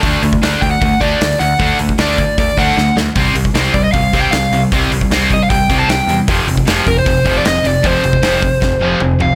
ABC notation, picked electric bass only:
X:1
M:4/4
L:1/8
Q:1/4=154
K:Dphr
V:1 name="Picked electric bass" clef=bass
D,, D,, D,, D,, D,, D,, D,, D,, | D,, D,, D,,2 D,, D,, D,, D,, | C,, C,, C,, C,, C,, C,, C,, C,, | C,, C,, C,,2 C,, C,, C,, =E,, |
F,,, F,,, F,,, F,,, F,,, F,,, F,,, F,,, | F,,, F,,, F,,,2 F,,, F,,, F,,, F,,, |]